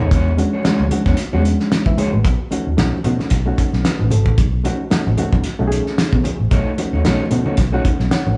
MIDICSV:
0, 0, Header, 1, 7, 480
1, 0, Start_track
1, 0, Tempo, 533333
1, 103, Time_signature, 4, 2, 24, 8
1, 7537, End_track
2, 0, Start_track
2, 0, Title_t, "Clean electric guitar"
2, 0, Program_c, 0, 27
2, 0, Note_on_c, 0, 73, 59
2, 3, Note_on_c, 0, 68, 61
2, 4, Note_on_c, 0, 63, 56
2, 6, Note_on_c, 0, 57, 54
2, 102, Note_off_c, 0, 57, 0
2, 103, Note_off_c, 0, 73, 0
2, 106, Note_off_c, 0, 63, 0
2, 106, Note_on_c, 0, 56, 72
2, 108, Note_off_c, 0, 68, 0
2, 110, Note_on_c, 0, 62, 70
2, 111, Note_on_c, 0, 66, 83
2, 114, Note_on_c, 0, 73, 90
2, 270, Note_off_c, 0, 56, 0
2, 272, Note_off_c, 0, 62, 0
2, 273, Note_off_c, 0, 66, 0
2, 274, Note_off_c, 0, 73, 0
2, 480, Note_on_c, 0, 73, 67
2, 485, Note_on_c, 0, 66, 60
2, 487, Note_on_c, 0, 62, 50
2, 489, Note_on_c, 0, 56, 49
2, 571, Note_off_c, 0, 56, 0
2, 574, Note_off_c, 0, 62, 0
2, 578, Note_off_c, 0, 66, 0
2, 582, Note_off_c, 0, 73, 0
2, 582, Note_on_c, 0, 56, 90
2, 585, Note_on_c, 0, 62, 87
2, 588, Note_on_c, 0, 66, 86
2, 593, Note_on_c, 0, 73, 94
2, 748, Note_off_c, 0, 56, 0
2, 750, Note_off_c, 0, 62, 0
2, 751, Note_off_c, 0, 66, 0
2, 753, Note_off_c, 0, 73, 0
2, 953, Note_on_c, 0, 73, 69
2, 957, Note_on_c, 0, 66, 53
2, 960, Note_on_c, 0, 62, 54
2, 965, Note_on_c, 0, 56, 45
2, 1054, Note_off_c, 0, 56, 0
2, 1056, Note_off_c, 0, 62, 0
2, 1059, Note_off_c, 0, 66, 0
2, 1060, Note_off_c, 0, 73, 0
2, 1198, Note_on_c, 0, 73, 84
2, 1201, Note_on_c, 0, 66, 71
2, 1204, Note_on_c, 0, 62, 60
2, 1207, Note_on_c, 0, 56, 67
2, 1294, Note_off_c, 0, 56, 0
2, 1298, Note_off_c, 0, 62, 0
2, 1299, Note_off_c, 0, 66, 0
2, 1300, Note_off_c, 0, 73, 0
2, 1779, Note_on_c, 0, 56, 78
2, 1784, Note_on_c, 0, 62, 77
2, 1787, Note_on_c, 0, 66, 86
2, 1789, Note_on_c, 0, 73, 75
2, 1906, Note_off_c, 0, 73, 0
2, 1910, Note_off_c, 0, 66, 0
2, 1914, Note_off_c, 0, 62, 0
2, 1947, Note_off_c, 0, 56, 0
2, 5859, Note_on_c, 0, 57, 81
2, 5862, Note_on_c, 0, 63, 78
2, 5866, Note_on_c, 0, 66, 69
2, 5869, Note_on_c, 0, 73, 91
2, 6027, Note_off_c, 0, 57, 0
2, 6028, Note_off_c, 0, 63, 0
2, 6030, Note_off_c, 0, 66, 0
2, 6032, Note_off_c, 0, 73, 0
2, 6239, Note_on_c, 0, 73, 55
2, 6242, Note_on_c, 0, 66, 61
2, 6245, Note_on_c, 0, 63, 51
2, 6248, Note_on_c, 0, 57, 50
2, 6331, Note_off_c, 0, 57, 0
2, 6335, Note_off_c, 0, 63, 0
2, 6338, Note_off_c, 0, 66, 0
2, 6341, Note_off_c, 0, 73, 0
2, 6342, Note_on_c, 0, 57, 78
2, 6346, Note_on_c, 0, 63, 78
2, 6349, Note_on_c, 0, 66, 76
2, 6352, Note_on_c, 0, 73, 86
2, 6508, Note_off_c, 0, 57, 0
2, 6510, Note_off_c, 0, 63, 0
2, 6512, Note_off_c, 0, 66, 0
2, 6513, Note_off_c, 0, 73, 0
2, 6709, Note_on_c, 0, 73, 65
2, 6713, Note_on_c, 0, 66, 67
2, 6716, Note_on_c, 0, 63, 57
2, 6718, Note_on_c, 0, 57, 53
2, 6810, Note_off_c, 0, 57, 0
2, 6812, Note_off_c, 0, 63, 0
2, 6814, Note_off_c, 0, 66, 0
2, 6818, Note_off_c, 0, 73, 0
2, 6954, Note_on_c, 0, 73, 74
2, 6957, Note_on_c, 0, 66, 77
2, 6961, Note_on_c, 0, 63, 63
2, 6963, Note_on_c, 0, 57, 60
2, 7050, Note_off_c, 0, 57, 0
2, 7053, Note_off_c, 0, 63, 0
2, 7055, Note_off_c, 0, 66, 0
2, 7057, Note_off_c, 0, 73, 0
2, 7537, End_track
3, 0, Start_track
3, 0, Title_t, "Reed electric piano"
3, 0, Program_c, 1, 4
3, 335, Note_on_c, 1, 56, 81
3, 342, Note_on_c, 1, 61, 82
3, 348, Note_on_c, 1, 62, 76
3, 353, Note_on_c, 1, 66, 83
3, 499, Note_off_c, 1, 56, 0
3, 503, Note_off_c, 1, 61, 0
3, 506, Note_off_c, 1, 62, 0
3, 508, Note_off_c, 1, 66, 0
3, 576, Note_on_c, 1, 56, 89
3, 582, Note_on_c, 1, 61, 81
3, 588, Note_on_c, 1, 62, 81
3, 593, Note_on_c, 1, 66, 87
3, 740, Note_off_c, 1, 56, 0
3, 743, Note_off_c, 1, 61, 0
3, 746, Note_off_c, 1, 62, 0
3, 748, Note_off_c, 1, 66, 0
3, 815, Note_on_c, 1, 56, 74
3, 821, Note_on_c, 1, 61, 67
3, 827, Note_on_c, 1, 62, 70
3, 833, Note_on_c, 1, 66, 89
3, 1045, Note_off_c, 1, 56, 0
3, 1048, Note_off_c, 1, 61, 0
3, 1051, Note_off_c, 1, 62, 0
3, 1054, Note_off_c, 1, 66, 0
3, 1193, Note_on_c, 1, 55, 67
3, 1198, Note_on_c, 1, 61, 78
3, 1204, Note_on_c, 1, 62, 71
3, 1208, Note_on_c, 1, 66, 92
3, 1245, Note_off_c, 1, 55, 0
3, 1249, Note_on_c, 1, 56, 89
3, 1548, Note_off_c, 1, 66, 0
3, 1679, Note_on_c, 1, 76, 62
3, 1684, Note_on_c, 1, 71, 51
3, 1778, Note_off_c, 1, 76, 0
3, 1781, Note_off_c, 1, 71, 0
3, 1782, Note_off_c, 1, 61, 0
3, 1784, Note_on_c, 1, 73, 64
3, 1785, Note_off_c, 1, 62, 0
3, 1788, Note_on_c, 1, 68, 51
3, 1807, Note_off_c, 1, 56, 0
3, 1911, Note_off_c, 1, 73, 0
3, 1913, Note_off_c, 1, 68, 0
3, 1919, Note_on_c, 1, 71, 58
3, 1923, Note_on_c, 1, 66, 50
3, 2146, Note_off_c, 1, 71, 0
3, 2148, Note_off_c, 1, 66, 0
3, 2256, Note_on_c, 1, 57, 82
3, 2262, Note_on_c, 1, 61, 79
3, 2268, Note_on_c, 1, 63, 70
3, 2273, Note_on_c, 1, 66, 88
3, 2420, Note_off_c, 1, 57, 0
3, 2423, Note_off_c, 1, 61, 0
3, 2426, Note_off_c, 1, 63, 0
3, 2428, Note_off_c, 1, 66, 0
3, 2495, Note_on_c, 1, 57, 82
3, 2502, Note_on_c, 1, 61, 75
3, 2507, Note_on_c, 1, 63, 83
3, 2512, Note_on_c, 1, 66, 94
3, 2660, Note_off_c, 1, 57, 0
3, 2663, Note_off_c, 1, 61, 0
3, 2666, Note_off_c, 1, 63, 0
3, 2668, Note_off_c, 1, 66, 0
3, 2737, Note_on_c, 1, 57, 78
3, 2744, Note_on_c, 1, 61, 73
3, 2750, Note_on_c, 1, 63, 75
3, 2755, Note_on_c, 1, 66, 79
3, 2966, Note_off_c, 1, 57, 0
3, 2970, Note_off_c, 1, 61, 0
3, 2973, Note_off_c, 1, 63, 0
3, 2975, Note_off_c, 1, 66, 0
3, 3112, Note_on_c, 1, 57, 84
3, 3118, Note_on_c, 1, 61, 73
3, 3122, Note_on_c, 1, 63, 74
3, 3129, Note_on_c, 1, 66, 93
3, 3463, Note_on_c, 1, 71, 71
3, 3686, Note_off_c, 1, 71, 0
3, 3699, Note_off_c, 1, 57, 0
3, 3702, Note_off_c, 1, 61, 0
3, 3703, Note_on_c, 1, 69, 69
3, 3704, Note_off_c, 1, 63, 0
3, 3708, Note_off_c, 1, 66, 0
3, 3926, Note_off_c, 1, 69, 0
3, 4173, Note_on_c, 1, 57, 75
3, 4181, Note_on_c, 1, 61, 77
3, 4186, Note_on_c, 1, 63, 84
3, 4192, Note_on_c, 1, 66, 98
3, 4339, Note_off_c, 1, 57, 0
3, 4343, Note_off_c, 1, 61, 0
3, 4345, Note_off_c, 1, 63, 0
3, 4348, Note_off_c, 1, 66, 0
3, 4415, Note_on_c, 1, 57, 91
3, 4421, Note_on_c, 1, 61, 74
3, 4427, Note_on_c, 1, 63, 80
3, 4432, Note_on_c, 1, 66, 94
3, 4580, Note_off_c, 1, 57, 0
3, 4583, Note_off_c, 1, 61, 0
3, 4586, Note_off_c, 1, 63, 0
3, 4588, Note_off_c, 1, 66, 0
3, 4655, Note_on_c, 1, 57, 83
3, 4662, Note_on_c, 1, 61, 68
3, 4666, Note_on_c, 1, 63, 75
3, 4674, Note_on_c, 1, 66, 96
3, 4886, Note_off_c, 1, 57, 0
3, 4889, Note_off_c, 1, 61, 0
3, 4891, Note_off_c, 1, 63, 0
3, 4895, Note_off_c, 1, 66, 0
3, 5032, Note_on_c, 1, 57, 97
3, 5037, Note_on_c, 1, 61, 78
3, 5043, Note_on_c, 1, 63, 84
3, 5048, Note_on_c, 1, 66, 82
3, 5093, Note_off_c, 1, 66, 0
3, 5107, Note_on_c, 1, 68, 102
3, 5619, Note_off_c, 1, 57, 0
3, 5622, Note_off_c, 1, 61, 0
3, 5625, Note_off_c, 1, 63, 0
3, 5657, Note_off_c, 1, 68, 0
3, 6097, Note_on_c, 1, 57, 76
3, 6100, Note_on_c, 1, 61, 73
3, 6106, Note_on_c, 1, 63, 78
3, 6114, Note_on_c, 1, 66, 82
3, 6260, Note_off_c, 1, 57, 0
3, 6262, Note_off_c, 1, 61, 0
3, 6265, Note_off_c, 1, 63, 0
3, 6269, Note_off_c, 1, 66, 0
3, 6337, Note_on_c, 1, 57, 83
3, 6343, Note_on_c, 1, 61, 77
3, 6348, Note_on_c, 1, 63, 77
3, 6354, Note_on_c, 1, 66, 98
3, 6500, Note_off_c, 1, 57, 0
3, 6503, Note_off_c, 1, 61, 0
3, 6506, Note_off_c, 1, 63, 0
3, 6509, Note_off_c, 1, 66, 0
3, 6574, Note_on_c, 1, 57, 83
3, 6581, Note_on_c, 1, 61, 70
3, 6586, Note_on_c, 1, 63, 73
3, 6591, Note_on_c, 1, 66, 85
3, 6804, Note_off_c, 1, 57, 0
3, 6808, Note_off_c, 1, 61, 0
3, 6811, Note_off_c, 1, 63, 0
3, 6813, Note_off_c, 1, 66, 0
3, 6948, Note_on_c, 1, 57, 78
3, 6955, Note_on_c, 1, 61, 82
3, 6962, Note_on_c, 1, 63, 81
3, 6967, Note_on_c, 1, 66, 102
3, 7300, Note_on_c, 1, 78, 70
3, 7306, Note_on_c, 1, 73, 56
3, 7307, Note_off_c, 1, 66, 0
3, 7529, Note_off_c, 1, 78, 0
3, 7532, Note_off_c, 1, 73, 0
3, 7537, Note_off_c, 1, 57, 0
3, 7537, Note_off_c, 1, 61, 0
3, 7537, Note_off_c, 1, 63, 0
3, 7537, End_track
4, 0, Start_track
4, 0, Title_t, "Fingered electric bass"
4, 0, Program_c, 2, 33
4, 0, Note_on_c, 2, 39, 90
4, 78, Note_off_c, 2, 39, 0
4, 104, Note_on_c, 2, 40, 93
4, 383, Note_off_c, 2, 40, 0
4, 719, Note_on_c, 2, 38, 90
4, 797, Note_off_c, 2, 38, 0
4, 954, Note_on_c, 2, 40, 87
4, 1034, Note_off_c, 2, 40, 0
4, 1201, Note_on_c, 2, 40, 81
4, 1379, Note_off_c, 2, 40, 0
4, 1676, Note_on_c, 2, 52, 92
4, 1755, Note_off_c, 2, 52, 0
4, 1921, Note_on_c, 2, 33, 85
4, 2024, Note_off_c, 2, 33, 0
4, 2024, Note_on_c, 2, 35, 106
4, 2124, Note_off_c, 2, 35, 0
4, 2401, Note_on_c, 2, 39, 68
4, 2479, Note_off_c, 2, 39, 0
4, 2508, Note_on_c, 2, 35, 96
4, 2607, Note_off_c, 2, 35, 0
4, 2747, Note_on_c, 2, 47, 98
4, 2846, Note_off_c, 2, 47, 0
4, 2981, Note_on_c, 2, 35, 88
4, 3161, Note_off_c, 2, 35, 0
4, 3361, Note_on_c, 2, 35, 89
4, 3438, Note_off_c, 2, 35, 0
4, 3602, Note_on_c, 2, 33, 76
4, 3706, Note_on_c, 2, 32, 94
4, 3720, Note_off_c, 2, 33, 0
4, 3836, Note_off_c, 2, 32, 0
4, 3836, Note_on_c, 2, 33, 87
4, 3915, Note_off_c, 2, 33, 0
4, 3942, Note_on_c, 2, 35, 104
4, 4222, Note_off_c, 2, 35, 0
4, 4561, Note_on_c, 2, 33, 81
4, 4639, Note_off_c, 2, 33, 0
4, 4795, Note_on_c, 2, 35, 93
4, 4875, Note_off_c, 2, 35, 0
4, 5039, Note_on_c, 2, 35, 75
4, 5218, Note_off_c, 2, 35, 0
4, 5515, Note_on_c, 2, 47, 98
4, 5595, Note_off_c, 2, 47, 0
4, 5758, Note_on_c, 2, 33, 85
4, 5837, Note_off_c, 2, 33, 0
4, 5862, Note_on_c, 2, 35, 94
4, 5963, Note_off_c, 2, 35, 0
4, 6238, Note_on_c, 2, 39, 80
4, 6316, Note_off_c, 2, 39, 0
4, 6346, Note_on_c, 2, 35, 90
4, 6445, Note_off_c, 2, 35, 0
4, 6582, Note_on_c, 2, 47, 90
4, 6683, Note_off_c, 2, 47, 0
4, 6822, Note_on_c, 2, 35, 100
4, 7002, Note_off_c, 2, 35, 0
4, 7197, Note_on_c, 2, 35, 82
4, 7276, Note_off_c, 2, 35, 0
4, 7439, Note_on_c, 2, 33, 76
4, 7517, Note_off_c, 2, 33, 0
4, 7537, End_track
5, 0, Start_track
5, 0, Title_t, "Muted clean electric guitar strokes"
5, 349, Note_on_c, 9, 29, 30
5, 439, Note_off_c, 9, 29, 0
5, 825, Note_on_c, 9, 29, 43
5, 915, Note_off_c, 9, 29, 0
5, 1065, Note_on_c, 9, 29, 39
5, 1155, Note_off_c, 9, 29, 0
5, 1305, Note_on_c, 9, 29, 36
5, 1395, Note_off_c, 9, 29, 0
5, 1439, Note_on_c, 9, 29, 33
5, 1529, Note_off_c, 9, 29, 0
5, 1543, Note_on_c, 9, 29, 38
5, 1633, Note_off_c, 9, 29, 0
5, 1677, Note_on_c, 9, 29, 62
5, 1767, Note_off_c, 9, 29, 0
5, 1917, Note_on_c, 9, 29, 49
5, 2007, Note_off_c, 9, 29, 0
5, 6100, Note_on_c, 9, 29, 41
5, 6190, Note_off_c, 9, 29, 0
5, 6579, Note_on_c, 9, 29, 46
5, 6669, Note_off_c, 9, 29, 0
5, 6821, Note_on_c, 9, 29, 41
5, 6911, Note_off_c, 9, 29, 0
5, 7061, Note_on_c, 9, 29, 43
5, 7151, Note_off_c, 9, 29, 0
5, 7196, Note_on_c, 9, 29, 45
5, 7286, Note_off_c, 9, 29, 0
5, 7299, Note_on_c, 9, 29, 35
5, 7389, Note_off_c, 9, 29, 0
5, 7436, Note_on_c, 9, 29, 46
5, 7526, Note_off_c, 9, 29, 0
5, 7537, End_track
6, 0, Start_track
6, 0, Title_t, "Muted fingered electric bass strokes"
6, 584, Note_on_c, 9, 29, 46
6, 674, Note_off_c, 9, 29, 0
6, 4429, Note_on_c, 9, 29, 47
6, 4519, Note_off_c, 9, 29, 0
6, 4904, Note_on_c, 9, 29, 46
6, 4994, Note_off_c, 9, 29, 0
6, 7537, End_track
7, 0, Start_track
7, 0, Title_t, "Drums"
7, 0, Note_on_c, 9, 43, 81
7, 86, Note_off_c, 9, 43, 0
7, 102, Note_on_c, 9, 36, 122
7, 102, Note_on_c, 9, 42, 82
7, 105, Note_on_c, 9, 62, 39
7, 192, Note_off_c, 9, 36, 0
7, 192, Note_off_c, 9, 42, 0
7, 195, Note_off_c, 9, 62, 0
7, 235, Note_on_c, 9, 62, 27
7, 325, Note_off_c, 9, 62, 0
7, 345, Note_on_c, 9, 42, 63
7, 345, Note_on_c, 9, 63, 78
7, 435, Note_off_c, 9, 42, 0
7, 435, Note_off_c, 9, 63, 0
7, 583, Note_on_c, 9, 38, 105
7, 584, Note_on_c, 9, 42, 94
7, 673, Note_off_c, 9, 38, 0
7, 674, Note_off_c, 9, 42, 0
7, 716, Note_on_c, 9, 63, 73
7, 806, Note_off_c, 9, 63, 0
7, 818, Note_on_c, 9, 63, 75
7, 818, Note_on_c, 9, 64, 69
7, 819, Note_on_c, 9, 42, 66
7, 908, Note_off_c, 9, 63, 0
7, 908, Note_off_c, 9, 64, 0
7, 909, Note_off_c, 9, 42, 0
7, 951, Note_on_c, 9, 64, 66
7, 953, Note_on_c, 9, 36, 88
7, 957, Note_on_c, 9, 38, 34
7, 1041, Note_off_c, 9, 64, 0
7, 1043, Note_off_c, 9, 36, 0
7, 1047, Note_off_c, 9, 38, 0
7, 1052, Note_on_c, 9, 42, 98
7, 1059, Note_on_c, 9, 38, 39
7, 1142, Note_off_c, 9, 42, 0
7, 1149, Note_off_c, 9, 38, 0
7, 1196, Note_on_c, 9, 62, 32
7, 1286, Note_off_c, 9, 62, 0
7, 1301, Note_on_c, 9, 63, 70
7, 1307, Note_on_c, 9, 42, 76
7, 1391, Note_off_c, 9, 63, 0
7, 1397, Note_off_c, 9, 42, 0
7, 1440, Note_on_c, 9, 38, 31
7, 1530, Note_off_c, 9, 38, 0
7, 1542, Note_on_c, 9, 62, 35
7, 1546, Note_on_c, 9, 38, 102
7, 1547, Note_on_c, 9, 42, 98
7, 1632, Note_off_c, 9, 62, 0
7, 1636, Note_off_c, 9, 38, 0
7, 1637, Note_off_c, 9, 42, 0
7, 1674, Note_on_c, 9, 36, 80
7, 1674, Note_on_c, 9, 63, 65
7, 1764, Note_off_c, 9, 36, 0
7, 1764, Note_off_c, 9, 63, 0
7, 1781, Note_on_c, 9, 63, 57
7, 1781, Note_on_c, 9, 64, 85
7, 1784, Note_on_c, 9, 42, 69
7, 1871, Note_off_c, 9, 63, 0
7, 1871, Note_off_c, 9, 64, 0
7, 1874, Note_off_c, 9, 42, 0
7, 2021, Note_on_c, 9, 36, 125
7, 2021, Note_on_c, 9, 42, 80
7, 2022, Note_on_c, 9, 62, 37
7, 2111, Note_off_c, 9, 36, 0
7, 2111, Note_off_c, 9, 42, 0
7, 2112, Note_off_c, 9, 62, 0
7, 2261, Note_on_c, 9, 63, 80
7, 2266, Note_on_c, 9, 42, 67
7, 2351, Note_off_c, 9, 63, 0
7, 2356, Note_off_c, 9, 42, 0
7, 2502, Note_on_c, 9, 38, 99
7, 2503, Note_on_c, 9, 42, 88
7, 2592, Note_off_c, 9, 38, 0
7, 2593, Note_off_c, 9, 42, 0
7, 2635, Note_on_c, 9, 63, 76
7, 2725, Note_off_c, 9, 63, 0
7, 2737, Note_on_c, 9, 63, 77
7, 2737, Note_on_c, 9, 64, 79
7, 2740, Note_on_c, 9, 42, 76
7, 2827, Note_off_c, 9, 63, 0
7, 2827, Note_off_c, 9, 64, 0
7, 2830, Note_off_c, 9, 42, 0
7, 2873, Note_on_c, 9, 64, 71
7, 2879, Note_on_c, 9, 38, 32
7, 2963, Note_off_c, 9, 64, 0
7, 2969, Note_off_c, 9, 38, 0
7, 2973, Note_on_c, 9, 42, 91
7, 2979, Note_on_c, 9, 38, 37
7, 2981, Note_on_c, 9, 36, 97
7, 2986, Note_on_c, 9, 62, 42
7, 3063, Note_off_c, 9, 42, 0
7, 3069, Note_off_c, 9, 38, 0
7, 3071, Note_off_c, 9, 36, 0
7, 3076, Note_off_c, 9, 62, 0
7, 3116, Note_on_c, 9, 62, 34
7, 3206, Note_off_c, 9, 62, 0
7, 3220, Note_on_c, 9, 63, 68
7, 3224, Note_on_c, 9, 36, 89
7, 3225, Note_on_c, 9, 42, 74
7, 3310, Note_off_c, 9, 63, 0
7, 3314, Note_off_c, 9, 36, 0
7, 3315, Note_off_c, 9, 42, 0
7, 3361, Note_on_c, 9, 38, 30
7, 3451, Note_off_c, 9, 38, 0
7, 3461, Note_on_c, 9, 62, 33
7, 3464, Note_on_c, 9, 38, 111
7, 3465, Note_on_c, 9, 42, 103
7, 3551, Note_off_c, 9, 62, 0
7, 3554, Note_off_c, 9, 38, 0
7, 3555, Note_off_c, 9, 42, 0
7, 3594, Note_on_c, 9, 62, 39
7, 3594, Note_on_c, 9, 63, 75
7, 3684, Note_off_c, 9, 62, 0
7, 3684, Note_off_c, 9, 63, 0
7, 3694, Note_on_c, 9, 63, 59
7, 3694, Note_on_c, 9, 64, 82
7, 3703, Note_on_c, 9, 42, 70
7, 3784, Note_off_c, 9, 63, 0
7, 3784, Note_off_c, 9, 64, 0
7, 3793, Note_off_c, 9, 42, 0
7, 3832, Note_on_c, 9, 36, 89
7, 3922, Note_off_c, 9, 36, 0
7, 3941, Note_on_c, 9, 36, 118
7, 3941, Note_on_c, 9, 42, 84
7, 4031, Note_off_c, 9, 36, 0
7, 4031, Note_off_c, 9, 42, 0
7, 4071, Note_on_c, 9, 62, 29
7, 4161, Note_off_c, 9, 62, 0
7, 4180, Note_on_c, 9, 63, 87
7, 4184, Note_on_c, 9, 42, 77
7, 4270, Note_off_c, 9, 63, 0
7, 4274, Note_off_c, 9, 42, 0
7, 4422, Note_on_c, 9, 38, 114
7, 4422, Note_on_c, 9, 42, 94
7, 4512, Note_off_c, 9, 38, 0
7, 4512, Note_off_c, 9, 42, 0
7, 4560, Note_on_c, 9, 62, 34
7, 4560, Note_on_c, 9, 63, 75
7, 4650, Note_off_c, 9, 62, 0
7, 4650, Note_off_c, 9, 63, 0
7, 4659, Note_on_c, 9, 42, 67
7, 4664, Note_on_c, 9, 63, 74
7, 4664, Note_on_c, 9, 64, 77
7, 4749, Note_off_c, 9, 42, 0
7, 4754, Note_off_c, 9, 63, 0
7, 4754, Note_off_c, 9, 64, 0
7, 4793, Note_on_c, 9, 36, 86
7, 4793, Note_on_c, 9, 64, 67
7, 4883, Note_off_c, 9, 36, 0
7, 4883, Note_off_c, 9, 64, 0
7, 4893, Note_on_c, 9, 42, 90
7, 4899, Note_on_c, 9, 38, 40
7, 4983, Note_off_c, 9, 42, 0
7, 4989, Note_off_c, 9, 38, 0
7, 5039, Note_on_c, 9, 62, 36
7, 5129, Note_off_c, 9, 62, 0
7, 5142, Note_on_c, 9, 63, 74
7, 5147, Note_on_c, 9, 42, 77
7, 5232, Note_off_c, 9, 63, 0
7, 5237, Note_off_c, 9, 42, 0
7, 5280, Note_on_c, 9, 38, 33
7, 5370, Note_off_c, 9, 38, 0
7, 5383, Note_on_c, 9, 62, 37
7, 5384, Note_on_c, 9, 38, 116
7, 5385, Note_on_c, 9, 42, 109
7, 5473, Note_off_c, 9, 62, 0
7, 5474, Note_off_c, 9, 38, 0
7, 5475, Note_off_c, 9, 42, 0
7, 5513, Note_on_c, 9, 36, 86
7, 5514, Note_on_c, 9, 63, 75
7, 5603, Note_off_c, 9, 36, 0
7, 5604, Note_off_c, 9, 63, 0
7, 5616, Note_on_c, 9, 63, 67
7, 5616, Note_on_c, 9, 64, 87
7, 5625, Note_on_c, 9, 42, 71
7, 5706, Note_off_c, 9, 63, 0
7, 5706, Note_off_c, 9, 64, 0
7, 5715, Note_off_c, 9, 42, 0
7, 5858, Note_on_c, 9, 62, 40
7, 5861, Note_on_c, 9, 36, 124
7, 5861, Note_on_c, 9, 42, 92
7, 5948, Note_off_c, 9, 62, 0
7, 5951, Note_off_c, 9, 36, 0
7, 5951, Note_off_c, 9, 42, 0
7, 5989, Note_on_c, 9, 62, 30
7, 6079, Note_off_c, 9, 62, 0
7, 6104, Note_on_c, 9, 42, 76
7, 6105, Note_on_c, 9, 63, 81
7, 6194, Note_off_c, 9, 42, 0
7, 6195, Note_off_c, 9, 63, 0
7, 6344, Note_on_c, 9, 38, 92
7, 6344, Note_on_c, 9, 42, 94
7, 6348, Note_on_c, 9, 62, 33
7, 6434, Note_off_c, 9, 38, 0
7, 6434, Note_off_c, 9, 42, 0
7, 6438, Note_off_c, 9, 62, 0
7, 6480, Note_on_c, 9, 62, 37
7, 6480, Note_on_c, 9, 63, 70
7, 6570, Note_off_c, 9, 62, 0
7, 6570, Note_off_c, 9, 63, 0
7, 6577, Note_on_c, 9, 42, 68
7, 6583, Note_on_c, 9, 63, 79
7, 6583, Note_on_c, 9, 64, 77
7, 6667, Note_off_c, 9, 42, 0
7, 6673, Note_off_c, 9, 63, 0
7, 6673, Note_off_c, 9, 64, 0
7, 6711, Note_on_c, 9, 64, 80
7, 6801, Note_off_c, 9, 64, 0
7, 6814, Note_on_c, 9, 42, 101
7, 6820, Note_on_c, 9, 36, 95
7, 6820, Note_on_c, 9, 38, 40
7, 6827, Note_on_c, 9, 62, 39
7, 6904, Note_off_c, 9, 42, 0
7, 6910, Note_off_c, 9, 36, 0
7, 6910, Note_off_c, 9, 38, 0
7, 6917, Note_off_c, 9, 62, 0
7, 7063, Note_on_c, 9, 36, 96
7, 7064, Note_on_c, 9, 42, 73
7, 7065, Note_on_c, 9, 63, 72
7, 7153, Note_off_c, 9, 36, 0
7, 7154, Note_off_c, 9, 42, 0
7, 7155, Note_off_c, 9, 63, 0
7, 7197, Note_on_c, 9, 38, 34
7, 7287, Note_off_c, 9, 38, 0
7, 7301, Note_on_c, 9, 38, 103
7, 7302, Note_on_c, 9, 42, 104
7, 7391, Note_off_c, 9, 38, 0
7, 7392, Note_off_c, 9, 42, 0
7, 7439, Note_on_c, 9, 62, 38
7, 7439, Note_on_c, 9, 63, 81
7, 7529, Note_off_c, 9, 62, 0
7, 7529, Note_off_c, 9, 63, 0
7, 7537, End_track
0, 0, End_of_file